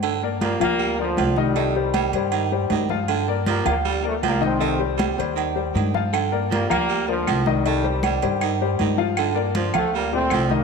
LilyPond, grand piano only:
\new Staff \with { instrumentName = "Grand piano" } { \time 4/4 \key g \minor \tempo 4 = 158 r8 <bes bes' d''>4 <f f' f''>4 <bes bes' d''>4 <ees ees' ees''>8 | <ees ees' ees''>8 <g g' c''>4 <g g' c''>4 <g g' c''>4 <f f' f''>8~ | <f f' f''>8 <bes bes' d''>4 <f f' f''>4 <bes bes' d''>4 <ees ees' ees''>8 | <ees ees' ees''>8 <g g' c''>4 <g g' c''>4 <g g' c''>4 <f f' f''>8~ |
<f f' f''>8 <bes bes' d''>4 <f f' f''>4 <bes bes' d''>4 <ees ees' ees''>8 | <ees ees' ees''>8 <g g' c''>4 <g g' c''>4 <g g' c''>4 <f f' f''>8~ | <f f' f''>8 <bes bes' d''>4 <f f' f''>4 <bes, g' d''>4 <ees ees' ees''>8 | }